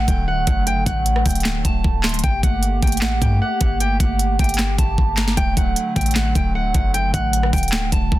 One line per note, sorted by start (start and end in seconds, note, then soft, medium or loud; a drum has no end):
0.00 2.21 D3 medium
0.00 2.21 F#3 medium
0.00 5.33 A3 medium
0.08 0.46 D1 loud
0.08 0.26 G5 medium
0.08 kick loud
0.08 closed hi-hat medium
0.28 0.45 F#5 medium
0.47 0.85 F#1 loud
0.47 0.65 F#5 medium
0.47 kick medium
0.47 closed hi-hat medium
0.67 0.84 G5 loud
0.67 closed hi-hat medium
0.86 1.24 A1 loud
0.86 1.23 F#5 medium
0.86 kick loud
0.86 closed hi-hat medium
1.06 closed hi-hat loud
1.16 cross-stick medium
1.26 1.63 D1 loud
1.26 1.62 G5 medium
1.26 kick medium
1.26 closed hi-hat medium
1.26 open hi-hat medium
1.31 closed hi-hat medium
1.35 closed hi-hat medium
1.40 closed hi-hat medium
1.44 snare loud
1.44 clap medium
1.44 closed hi-hat medium
1.65 1.84 D1 loud
1.65 2.02 A5 medium
1.65 kick loud
1.65 closed hi-hat medium
1.84 2.22 D1 loud
1.84 kick loud
2.03 2.22 C6 medium
2.03 snare medium
2.03 clap medium
2.03 closed hi-hat soft
2.09 closed hi-hat medium
2.14 closed hi-hat medium
2.19 closed hi-hat medium
2.24 2.42 G1 loud
2.24 5.34 A#3 medium
2.24 5.34 G4 medium
2.24 2.41 G5 loud
2.24 kick loud
2.24 closed hi-hat medium
2.43 2.81 G1 loud
2.43 2.80 F#5 medium
2.43 kick loud
2.43 closed hi-hat medium
2.63 closed hi-hat loud
2.82 3.04 G1 loud
2.82 3.00 G5 medium
2.82 kick medium
2.82 closed hi-hat soft
2.87 closed hi-hat medium
2.92 closed hi-hat medium
2.97 closed hi-hat medium
3.01 3.21 A1 loud
3.01 3.20 F#5 medium
3.01 snare loud
3.01 clap medium
3.22 3.40 G2 loud
3.22 3.39 G5 medium
3.22 kick loud
3.22 closed hi-hat medium
3.42 3.59 F#5 medium
3.61 3.99 G1 loud
3.61 3.79 F#5 medium
3.61 kick medium
3.61 closed hi-hat medium
3.80 3.98 G5 loud
3.80 closed hi-hat medium
4.00 4.38 G1 loud
4.00 4.37 F#5 medium
4.00 kick loud
4.00 closed hi-hat medium
4.19 closed hi-hat medium
4.39 4.77 G1 loud
4.39 4.76 G5 medium
4.39 kick medium
4.39 closed hi-hat soft
4.44 closed hi-hat medium
4.49 closed hi-hat medium
4.54 closed hi-hat medium
4.58 snare loud
4.58 clap medium
4.58 closed hi-hat medium
4.78 4.97 G1 loud
4.78 5.15 A5 medium
4.78 kick loud
4.78 closed hi-hat medium
4.98 5.36 G1 loud
4.98 kick loud
5.17 5.35 A#5 medium
5.17 snare loud
5.17 clap medium
5.17 closed hi-hat medium
5.28 snare medium
5.37 5.56 D1 loud
5.37 8.19 D3 medium
5.37 8.19 F#3 medium
5.37 8.19 A3 medium
5.37 5.55 G5 loud
5.37 kick loud
5.37 closed hi-hat medium
5.57 5.76 D1 loud
5.57 5.94 F#5 medium
5.57 kick loud
5.57 closed hi-hat medium
5.76 closed hi-hat medium
5.96 6.34 A1 loud
5.96 6.13 G5 medium
5.96 kick medium
5.96 closed hi-hat soft
6.01 closed hi-hat medium
6.06 closed hi-hat medium
6.11 closed hi-hat medium
6.15 6.33 F#5 medium
6.15 snare loud
6.15 clap medium
6.15 closed hi-hat medium
6.35 6.73 D1 loud
6.35 6.53 G5 medium
6.35 kick loud
6.35 closed hi-hat medium
6.55 6.73 F#5 medium
6.74 7.12 F#1 loud
6.74 6.92 F#5 medium
6.74 kick medium
6.74 closed hi-hat medium
6.94 7.12 G5 loud
6.94 closed hi-hat medium
7.13 7.51 A1 loud
7.13 7.51 F#5 medium
7.13 kick loud
7.13 closed hi-hat medium
7.33 closed hi-hat medium
7.43 cross-stick medium
7.53 7.91 D1 loud
7.53 7.90 G5 medium
7.53 kick medium
7.53 closed hi-hat medium
7.53 open hi-hat medium
7.58 closed hi-hat medium
7.63 closed hi-hat medium
7.68 closed hi-hat medium
7.72 snare loud
7.72 clap medium
7.72 closed hi-hat medium
7.92 8.11 D1 loud
7.92 8.19 A5 medium
7.92 kick loud
7.92 closed hi-hat medium
8.12 8.19 D1 loud
8.12 kick loud